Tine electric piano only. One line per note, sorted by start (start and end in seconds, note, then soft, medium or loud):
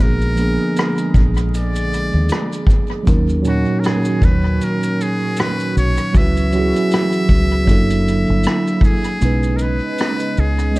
0.00 0.32 F3 medium
0.00 0.32 A#3 medium
0.00 0.33 B3 medium
0.00 0.34 D4 medium
0.00 0.35 G#4 medium
0.36 1.69 F3 medium
0.36 1.69 A#3 medium
0.36 1.70 B3 medium
0.40 1.71 D4 medium
0.40 1.72 G#4 medium
3.03 3.38 F#3 medium
3.03 3.39 A#3 medium
3.03 3.40 C#4 medium
3.07 3.40 D#4 medium
3.07 3.41 A#4 medium
3.42 4.77 A#2 medium
3.42 4.76 F#3 loud
3.42 4.77 C#4 medium
3.47 4.78 D#4 medium
3.47 4.79 C#5 loud
6.13 6.47 F#3 medium
6.13 6.47 C#4 medium
6.13 6.48 F#4 medium
6.17 6.49 E4 medium
6.17 6.50 B4 medium
6.52 7.63 F#3 loud
6.52 7.69 C#4 medium
6.52 7.69 F#4 medium
6.57 7.68 E4 medium
6.57 7.71 G#4 loud
7.65 8.99 F#3 medium
7.65 8.99 A#3 medium
7.65 9.00 D4 medium
7.69 9.01 E4 medium
7.69 9.01 A4 loud
9.19 10.53 G#3 medium
9.19 10.53 B3 medium
9.19 10.54 C#4 medium
9.24 10.55 D#4 medium
9.24 10.56 B4 medium
10.71 10.79 G#3 medium
10.71 10.79 B3 medium
10.71 10.79 C#4 medium
10.76 10.79 D#5 medium